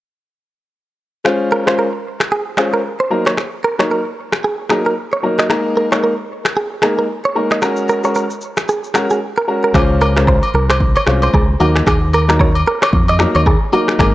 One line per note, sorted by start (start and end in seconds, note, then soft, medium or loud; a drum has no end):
1.25 1.63 G#3 medium
1.25 1.63 C#4 medium
1.25 1.63 F4 medium
1.25 1.63 C5 loud
1.25 finger snap medium
1.25 cross-stick medium
1.52 1.63 A#4 medium
1.66 1.85 G#3 medium
1.66 1.86 C#4 medium
1.66 1.86 F4 medium
1.66 1.86 C5 medium
1.66 1.75 C5 medium
1.66 finger snap medium
1.66 cross-stick medium
1.79 1.97 A#4 medium
2.20 finger snap medium
2.20 cross-stick loud
2.32 2.42 G#4 medium
2.57 2.78 G#3 medium
2.57 2.78 C#4 medium
2.57 2.78 F4 medium
2.57 2.69 G#4 medium
2.57 2.79 C5 medium
2.57 finger snap medium
2.57 cross-stick medium
2.74 2.81 A#4 medium
3.00 3.08 C5 medium
3.10 3.31 F#3 medium
3.10 3.32 A#3 medium
3.10 3.32 D#4 medium
3.10 3.32 A#4 medium
3.26 3.34 C#5 medium
3.26 finger snap medium
3.26 cross-stick medium
3.37 finger snap medium
3.37 cross-stick medium
3.64 3.75 A#4 medium
3.79 3.98 F#3 medium
3.79 3.98 A#3 medium
3.79 3.98 D#4 medium
3.79 3.98 A#4 medium
3.79 3.87 C#5 medium
3.79 finger snap medium
3.79 cross-stick medium
3.91 4.10 A#4 medium
4.32 finger snap medium
4.32 cross-stick loud
4.44 4.55 G#4 medium
4.69 4.91 F#3 medium
4.69 4.91 A#3 medium
4.69 4.91 D#4 medium
4.69 4.81 G#4 medium
4.69 4.91 A#4 medium
4.69 finger snap medium
4.69 cross-stick medium
4.86 4.94 A#4 medium
5.13 5.20 C#5 medium
5.23 5.48 F#3 medium
5.23 5.48 A#3 medium
5.23 5.48 D#4 medium
5.23 5.48 A#4 medium
5.39 5.47 D#5 medium
5.39 finger snap medium
5.39 cross-stick medium
5.50 5.88 G#3 medium
5.50 5.88 A#3 medium
5.50 5.88 D#4 medium
5.50 5.88 A#4 medium
5.50 finger snap medium
5.50 cross-stick medium
5.77 5.88 A#4 medium
5.91 6.10 G#3 medium
5.91 6.10 A#3 medium
5.91 6.11 D#4 medium
5.91 6.11 A#4 medium
5.91 6.00 C#5 medium
5.91 finger snap medium
5.91 cross-stick medium
6.04 6.22 A#4 medium
6.45 finger snap medium
6.45 cross-stick loud
6.57 6.67 G#4 medium
6.82 7.03 G#3 medium
6.82 7.03 A#3 medium
6.82 7.04 D#4 medium
6.82 6.94 G#4 medium
6.82 7.04 A#4 medium
6.82 finger snap medium
6.82 cross-stick medium
6.99 7.06 A#4 medium
7.25 7.33 C#5 medium
7.35 7.56 G#3 medium
7.35 7.57 A#3 medium
7.35 7.57 D#4 medium
7.35 7.57 A#4 medium
7.51 7.59 D#5 medium
7.51 finger snap medium
7.51 cross-stick medium
7.62 8.00 G#3 medium
7.62 8.00 C#4 medium
7.62 8.00 F#4 medium
7.62 8.01 A#4 loud
7.62 finger snap medium
7.62 cross-stick medium
7.62 shaker medium
7.76 shaker medium
7.88 8.00 A#4 medium
7.88 shaker soft
8.04 8.23 G#3 medium
8.04 8.23 C#4 medium
8.04 8.23 F#4 medium
8.04 8.23 A#4 medium
8.04 8.13 C#5 medium
8.04 shaker medium
8.15 8.34 A#4 medium
8.15 shaker medium
8.30 shaker soft
8.41 shaker medium
8.57 finger snap medium
8.57 cross-stick loud
8.57 shaker medium
8.68 8.80 G#4 medium
8.68 shaker medium
8.84 shaker soft
8.94 9.16 G#3 medium
8.94 9.16 C#4 medium
8.94 9.16 F#4 medium
8.94 9.06 F#4 medium
8.94 9.16 A#4 medium
8.94 finger snap medium
8.94 cross-stick medium
8.94 shaker medium
9.10 9.19 G#4 medium
9.10 shaker medium
9.38 9.45 A#4 medium
9.48 9.73 G#3 medium
9.48 9.73 C#4 medium
9.48 9.73 F#4 medium
9.48 9.73 A#4 medium
9.64 9.72 A#4 medium
9.74 10.39 C#2 loud
9.74 10.13 G#3 medium
9.74 10.13 C#4 medium
9.74 10.13 F4 medium
9.74 9.86 G#4 medium
9.74 10.13 C5 loud
9.74 finger snap medium
9.74 kick loud
9.74 cross-stick medium
9.74 high agogo medium
10.01 10.12 A#4 medium
10.01 high agogo medium
10.16 10.35 G#3 medium
10.16 10.35 C#4 medium
10.16 10.35 F4 medium
10.16 10.25 A#4 medium
10.16 10.35 C5 medium
10.16 finger snap medium
10.16 cross-stick medium
10.27 10.39 C5 medium
10.27 kick medium
10.27 low woodblock medium
10.43 high agogo medium
10.54 10.94 C2 medium
10.54 10.65 A#4 medium
10.70 10.78 C5 medium
10.70 finger snap medium
10.70 cross-stick loud
10.70 high agogo medium
10.80 kick loud
10.96 11.04 C#5 medium
10.96 high agogo medium
11.07 11.27 C2 medium
11.07 11.28 G#3 medium
11.07 11.28 C#4 medium
11.07 11.28 F4 medium
11.07 11.28 C5 medium
11.07 finger snap medium
11.07 cross-stick medium
11.22 11.31 C5 medium
11.22 high agogo medium
11.34 11.54 C#2 loud
11.34 11.45 G#4 medium
11.34 kick loud
11.34 low woodblock medium
11.60 11.80 D#2 loud
11.60 11.81 F#3 medium
11.60 11.81 A#3 medium
11.60 11.81 D#4 medium
11.60 11.72 F#4 medium
11.60 11.81 A#4 medium
11.60 high agogo medium
11.76 finger snap medium
11.76 cross-stick medium
11.87 12.62 D#2 loud
11.87 11.98 G#4 medium
11.87 finger snap medium
11.87 kick loud
11.87 cross-stick medium
11.87 high agogo medium
12.13 12.25 A#4 medium
12.13 high agogo medium
12.28 12.47 F#3 medium
12.28 12.47 A#3 medium
12.28 12.48 D#4 medium
12.28 12.48 A#4 medium
12.28 12.37 A#4 medium
12.28 finger snap medium
12.28 cross-stick medium
12.39 12.51 C#5 medium
12.39 kick medium
12.39 low woodblock medium
12.55 high agogo medium
12.68 12.78 A#4 medium
12.82 12.90 C#5 medium
12.82 finger snap medium
12.82 cross-stick loud
12.82 high agogo medium
12.93 13.25 F2 loud
12.93 kick loud
13.08 13.17 D#5 medium
13.08 high agogo medium
13.19 13.40 F#3 medium
13.19 13.40 A#3 medium
13.19 13.41 D#4 medium
13.19 13.41 A#4 medium
13.19 finger snap medium
13.19 cross-stick medium
13.35 13.55 D#2 medium
13.35 13.43 C#5 medium
13.35 high agogo medium
13.46 13.58 G#4 medium
13.46 kick loud
13.46 low woodblock medium
13.72 13.97 F#3 medium
13.72 13.97 A#3 medium
13.72 13.97 D#4 medium
13.72 13.84 F#4 medium
13.72 13.98 A#4 medium
13.72 high agogo medium
13.88 finger snap medium
13.88 cross-stick medium
13.99 14.14 G#1 loud
13.99 14.14 G#3 medium
13.99 14.14 A#3 medium
13.99 14.14 D#4 medium
13.99 14.11 G#4 medium
13.99 14.14 A#4 loud
13.99 finger snap medium
13.99 kick loud
13.99 cross-stick medium
13.99 high agogo medium